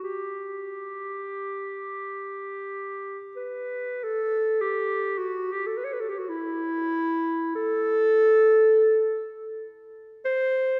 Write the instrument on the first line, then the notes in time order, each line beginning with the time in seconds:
clarinet
0.03 G4
3.36 B4
4.03 A4
4.61 G4
5.18 F#4
5.52 G4
5.66 A4
5.77 B4
5.84 C#5
5.93 B4
6.00 A4
6.09 G4
6.18 F#4
6.29 E4
7.55 A4
10.25 C5